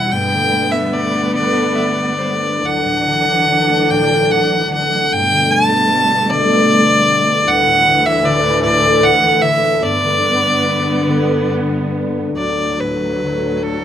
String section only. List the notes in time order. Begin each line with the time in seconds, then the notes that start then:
Already playing: G3
0.11 A3 B3
2.62 E3 F#3 D4
5.08 B2 G3 A3
7.47 D2 A2 E3
9.81 G2 D3 B3
12.38 D2 A2 F#3